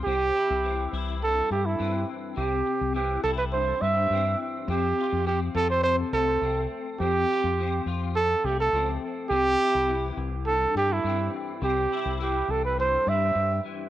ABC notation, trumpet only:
X:1
M:4/4
L:1/16
Q:1/4=104
K:C
V:1 name="Trumpet"
G6 z2 A2 G E3 z2 | G4 G2 A B c2 e4 z2 | G4 G2 A c c2 A4 z2 | G6 z2 A2 G A3 z2 |
G6 z2 A2 G E3 z2 | G4 G2 A B c2 e4 z2 |]